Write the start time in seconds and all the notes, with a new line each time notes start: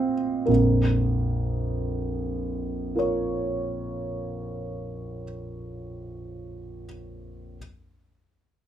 Already playing: A#2 C4 F4
0.46 A#1 F2 A#4
2.95 F4 A#4 C#5